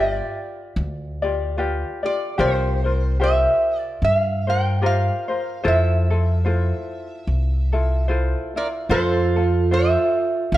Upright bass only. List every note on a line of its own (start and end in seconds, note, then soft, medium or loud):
0.00 0.19 G1 medium
0.76 1.82 D2 medium
2.39 3.45 C2 medium
4.02 5.08 G2 medium
5.65 6.70 F2 medium
7.27 8.33 C2 medium
8.89 9.95 F2 medium
10.52 10.57 C2 medium